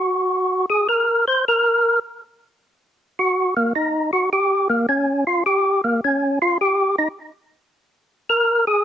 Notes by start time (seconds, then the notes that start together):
Already playing: F#4
0.70 G#4
0.89 A#4
1.28 C5
1.48 A#4
3.19 F#4
3.57 A#3
3.75 D#4
4.13 F#4
4.33 G4
4.70 A#3
4.89 C#4
5.27 F4
5.46 G4
5.84 A#3
6.04 C#4
6.42 F4
6.61 G4
6.98 D#4
8.29 A#4
8.67 G#4